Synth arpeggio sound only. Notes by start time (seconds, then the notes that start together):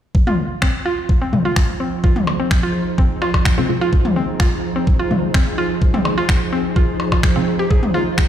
0.27 F4
0.62 C4
0.86 F4
1.22 C4
1.45 F4
1.80 C4
2.04 F4
2.40 C4
2.63 F4
2.98 C4
3.22 F4
3.58 C4
3.81 F4
4.16 C4
4.40 F4
4.76 C4
4.99 F4
5.34 C4
5.58 F4
5.94 C4
6.18 F4
6.53 C4
6.76 F4
7.12 F4
7.36 C4
7.59 G4
7.71 G#4
7.94 F4